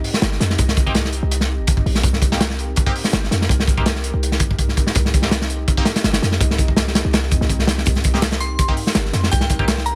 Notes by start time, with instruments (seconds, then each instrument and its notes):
Already playing: ambient pad C4 D#4 G4 D#5
0.04 open hi-hat
0.14 snare
0.22 808-style bass G1, snare, closed hi-hat
0.32 snare
0.40 808-style bass F2, snare, closed hi-hat
0.50 snare
0.58 808-style bass C2, kick, closed hi-hat
0.68 snare
0.77 kick, closed hi-hat
0.86 synth stab A#3 C4 D#4 G4, kick
0.95 snare, closed hi-hat
1.05 snare
1.13 closed hi-hat
1.23 808-style bass C2
1.31 closed hi-hat
1.41 snare
1.59 808-style bass G1
1.67 kick, closed hi-hat
1.77 kick
1.86 808-style bass A#1, open hi-hat
1.95 snare
2.03 808-style bass C2, ambient pad A#4, kick, closed hi-hat
2.13 snare
2.22 kick, closed hi-hat
2.32 synth stab A#3 C4 D#4 G4, snare
2.41 snare, closed hi-hat
2.50 snare
2.59 closed hi-hat
2.76 kick, closed hi-hat
2.86 synth stab A#3 C4 D#4 G4, kick
2.95 open hi-hat
3.04 snare
3.13 808-style bass G1, snare, closed hi-hat
3.24 snare
3.31 808-style bass F2, snare, closed hi-hat
3.41 snare
3.49 808-style bass C2, kick, closed hi-hat
3.60 snare
3.67 kick, closed hi-hat
3.77 synth stab A#3 C4 D#4 G4, kick
3.86 snare, closed hi-hat
3.96 snare
4.04 closed hi-hat
4.14 808-style bass C2
4.23 closed hi-hat
4.32 snare
4.40 kick, closed hi-hat
4.51 kick
4.59 kick, closed hi-hat
4.69 snare
4.77 kick, closed hi-hat
4.87 snare
4.95 808-style bass C2, ambient pad D#5, kick, closed hi-hat
5.05 snare
5.14 kick, closed hi-hat
5.22 synth stab A#3 C4 D#4 G4, snare
5.31 snare, closed hi-hat
5.41 snare
5.50 closed hi-hat
5.68 kick, closed hi-hat
5.77 synth stab A#3 C4 D#4 G4, kick
5.85 snare, closed hi-hat
5.96 snare, closed hi-hat
6.04 808-style bass G1, snare, closed hi-hat
6.13 snare, closed hi-hat
6.22 808-style bass F2, snare, closed hi-hat
6.32 snare
6.41 808-style bass C2, kick, closed hi-hat
6.51 snare
6.58 kick, closed hi-hat
6.68 kick
6.76 snare, closed hi-hat
6.88 snare
6.95 snare, closed hi-hat
7.05 808-style bass C2
7.13 snare, closed hi-hat
7.23 snare
7.31 808-style bass F2, kick, closed hi-hat
7.41 808-style bass C2, snare
7.50 kick, closed hi-hat
7.59 snare
7.67 snare, closed hi-hat
7.78 snare
7.86 808-style bass C2, ambient pad A#4, kick, closed hi-hat
7.95 snare, closed hi-hat
8.04 kick, closed hi-hat
8.14 synth stab A#3 C4 D#4 G4, snare
8.22 snare, closed hi-hat
8.32 snare, closed hi-hat
8.40 synth bell C6, closed hi-hat
8.59 kick, closed hi-hat
8.68 synth stab A#3 C4 D#4 G4, kick
8.77 closed hi-hat, open hi-hat
8.87 snare
8.95 808-style bass G1, snare, closed hi-hat
9.05 snare
9.13 808-style bass F2, snare, closed hi-hat
9.23 snare
9.31 808-style bass C2, synth bell G5, kick, closed hi-hat
9.41 synth bell G5, snare
9.49 kick, snare, closed hi-hat
9.59 synth stab A#3 C4 D#4 G4, kick
9.68 snare, closed hi-hat
9.77 snare
9.86 synth bell A#5, closed hi-hat